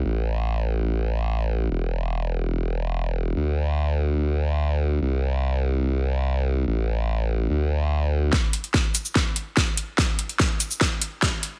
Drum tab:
HH |----------------|----------------|----------------|----------------|
SH |----------------|----------------|----------------|----------------|
SD |----------------|----------------|----------------|----------------|
BD |----------------|----------------|----------------|----------------|

HH |----------------|--xx--x---x---x-|--xx--x---x---x-|
SH |----------------|------xx--------|------xx--------|
SD |----------------|o---o---o---o---|o---o---o---o---|
BD |----------------|o---o---o---o---|o---o---o---o---|